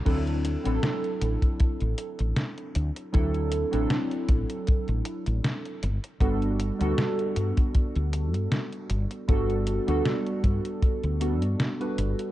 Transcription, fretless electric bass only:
X:1
M:4/4
L:1/16
Q:"Swing 16ths" 1/4=78
K:Dmix
V:1 name="Fretless electric bass" clef=bass
D,,2 z A,,, z2 A,,, z2 A,,, z A,,, z2 D,, z | D,,2 z A,,, z2 A,,, z2 A,,, z A,,, z2 G,,, z | G,,,2 z D,, z2 G,, z2 D,,2 G,, z2 G,,, z | G,,,2 z D,, z2 G,, z2 D,,2 G,, z2 G,,, z |]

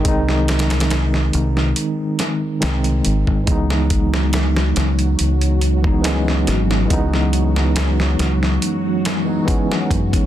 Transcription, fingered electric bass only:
X:1
M:4/4
L:1/16
Q:1/4=70
K:C#m
V:1 name="Fingered electric bass" clef=bass
^B,,,6 B,,,2 z4 B,,,2 G,,, G,,, | C,,6 C,,2 C,,6 G,,,2 | C,,6 C,,2 z6 F,, z |]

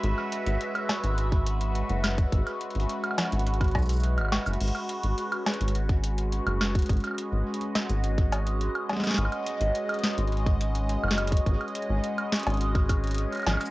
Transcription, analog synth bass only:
X:1
M:4/4
L:1/16
Q:1/4=105
K:B
V:1 name="Analog synth bass" clef=bass
G,,, z2 G,,, z3 G,,,6 F,,,3 | G,,, z2 G,,, z3 G,,,3 B,,,3 G,,, z F,,, | G,,, z2 G,,, z3 G,,,6 F,,,3 | G,,, z2 G,,, z3 G,,,6 z3 |
G,,, z2 G,,, z3 G,,,6 F,,,3 | G,,, z2 G,,, z3 G,,,6 z G,,, z |]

